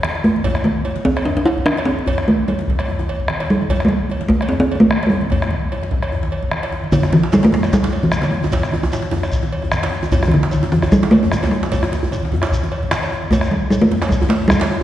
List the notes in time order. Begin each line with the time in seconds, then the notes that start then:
0.03 bombo rim, high conga
0.14 bombo rim, djembe slap, high conga
0.24 A3, djembe tone
0.36 djembe slap, high conga
0.44 bombo low, cowbell, djembe bass, low conga
0.55 bombo rim, djembe slap
0.64 A3, high conga
0.85 cowbell, djembe slap, djembe tone
0.96 djembe slap, high conga
1.05 C4, bombo low, low conga
1.17 bombo rim, cowbell
1.25 D4, djembe slap, djembe bass
1.37 D4, djembe slap, high conga
1.46 E4, cowbell, djembe slap
1.57 bombo low, low conga
1.66 D4, bombo rim, high conga
1.77 cowbell, djembe slap
1.85 C4, bombo rim, djembe tone
1.97 djembe slap, high conga
2.06 bombo low, cowbell, djembe bass, low conga
2.18 bombo rim, djembe slap
2.28 A3, high conga
2.48 G3, cowbell, djembe slap, djembe tone
2.59 djembe slap, high conga
2.68 bombo low, djembe slap, low conga
2.79 bombo rim, cowbell
2.88 djembe slap, djembe bass
2.99 bombo rim, djembe slap, djembe tone, high conga
3.09 cowbell, djembe slap
3.19 bombo low, low conga
3.28 bombo rim, high conga
3.40 cowbell, djembe slap
3.49 G3, bombo rim, djembe tone
3.61 djembe slap, high conga
3.69 bombo low, cowbell, djembe bass, low conga
3.80 bombo rim, djembe slap
3.85 G3 A3
3.90 high conga
4.09 cowbell, djembe slap, djembe tone
4.21 djembe slap, high conga
4.29 A3, bombo low, djembe slap, low conga
4.41 bombo rim, cowbell
4.49 C4, djembe slap, djembe bass
4.60 C4, bombo rim, djembe slap, high conga, djembe tone
4.71 cowbell, djembe slap
4.75 C4
4.80 A3, bombo low, low conga
4.90 bombo rim, high conga
5.03 cowbell, djembe slap
5.07 G3 A3
5.11 bombo rim, djembe tone
5.21 djembe slap, high conga
5.30 bombo low, cowbell, djembe slap, low conga, djembe bass
5.42 bombo rim, djembe slap
5.51 djembe slap, high conga
5.63 djembe slap
5.72 bombo rim, cowbell, djembe slap, djembe tone
5.82 bombo rim, djembe slap, high conga
5.91 bombo low, high conga, low conga
6.02 bombo rim, cowbell, high conga
6.12 bombo rim, djembe slap, high conga, djembe bass
6.23 djembe slap, high conga
6.32 cowbell, high conga
6.42 bombo low, djembe slap, high conga, low conga
6.51 bombo rim, djembe slap, high conga
6.63 bombo rim, cowbell, djembe slap, high conga
6.72 djembe tone
6.84 high conga
6.92 D3, bombo low, cowbell, djembe tone, low conga, djembe bass, shekere
7.03 bombo rim, djembe slap, djembe tone, shekere
7.12 E3, bombo rim, high conga
7.23 djembe slap
7.32 G3, cowbell, djembe slap, high conga, djembe tone, shekere
7.43 A3, djembe slap, djembe tone, high conga
7.52 G3, djembe tone, low conga, djembe bass
7.63 bombo rim, cowbell, shekere
7.72 G3, bombo low, djembe slap, shekere
7.83 djembe slap, high conga, djembe tone
7.93 cowbell
8.03 E3, bombo rim, high conga, low conga, djembe bass
8.12 bombo rim, djembe slap, high conga, shekere
8.22 D3, cowbell, djembe slap, shekere
8.31 C3, djembe tone
8.43 djembe slap, high conga, djembe tone, shekere
8.52 bombo low, cowbell, djembe slap, low conga, djembe bass, shekere
8.63 bombo rim, djembe slap, shekere
8.72 bombo rim, high conga, djembe tone
8.83 djembe slap, djembe tone
8.92 cowbell, djembe slap, djembe tone, high conga, shekere
9.02 djembe slap, high conga
9.11 djembe tone, djembe bass, low conga
9.23 bombo rim, cowbell, shekere
9.32 bombo low, djembe slap, shekere
9.43 djembe slap, djembe tone, high conga
9.53 cowbell
9.62 bombo rim, high conga, low conga, djembe bass
9.72 bombo rim, djembe slap, high conga, shekere
9.83 cowbell, djembe slap, shekere
9.92 djembe tone
10.03 djembe slap, high conga, djembe tone, shekere
10.11 bombo low, cowbell, djembe tone, low conga, djembe bass, shekere
10.23 bombo rim, djembe slap, djembe bass, shekere
10.28 E3, high conga
10.32 D3, bombo rim
10.43 djembe slap
10.51 cowbell, high conga, djembe tone, shekere
10.62 djembe slap, high conga, djembe tone
10.72 E3, djembe tone, djembe bass
10.82 bombo rim, cowbell, djembe bass, shekere
10.91 G3, bombo low, djembe slap, shekere
11.02 djembe slap, high conga, djembe tone
11.11 A3, cowbell
11.23 bombo rim, djembe tone, high conga, low conga, djembe bass
11.32 bombo rim, djembe slap, high conga, djembe tone, shekere
11.43 cowbell, djembe slap, djembe bass, shekere
11.47 A3
11.51 G3, djembe tone
11.63 djembe slap, high conga, shekere
11.72 bombo low, cowbell, low conga, djembe bass, shekere
11.83 bombo rim, djembe slap, djembe tone, high conga
11.92 djembe tone, high conga, shekere
12.03 djembe bass
12.11 bombo rim, cowbell, high conga, djembe tone, shekere
12.23 djembe slap, high conga
12.32 high conga, low conga, djembe bass
12.42 bombo rim, cowbell, djembe slap, shekere
12.44 djembe slap
12.51 bombo low, shekere
12.63 djembe slap, high conga, djembe tone
12.72 bombo rim, cowbell
12.83 djembe slap, high conga, low conga, djembe bass
12.91 bombo rim, djembe slap, high conga, shekere
13.03 cowbell, djembe slap, shekere
13.11 bombo rim, djembe tone
13.22 high conga
13.30 A3, bombo low, cowbell, low conga, djembe bass, shekere
13.41 bombo rim, djembe slap, shekere
13.51 G3, high conga
13.63 djembe slap
13.70 G3, cowbell, djembe tone, high conga, shekere
13.81 A3, djembe slap, high conga
13.91 djembe bass, low conga
14.02 bombo rim, cowbell, djembe slap, shekere
14.09 G3, bombo low, djembe slap, shekere
14.22 djembe slap, djembe tone, high conga, djembe bass
14.29 A3, cowbell, djembe slap
14.42 bombo rim, high conga, low conga, djembe bass
14.48 G3, bombo rim, djembe slap, high conga, djembe bass, shekere
14.60 G3, cowbell, djembe slap, shekere
14.63 djembe slap
14.71 djembe tone